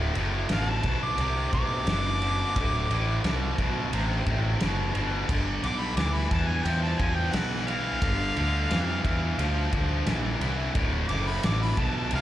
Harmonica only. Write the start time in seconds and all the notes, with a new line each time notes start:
0.52 F5
0.68 A5
1.03 D6
1.54 D6
5.64 D6
5.80 B5
5.96 D6
6.14 B5
6.31 A5
6.47 G#5
6.65 G5
6.82 A5
6.99 G#5
7.15 G5
7.33 F#5
7.67 F5
11.09 D6
11.27 B5
11.45 D6
11.62 B5
11.79 A5
11.97 A5
12.15 F5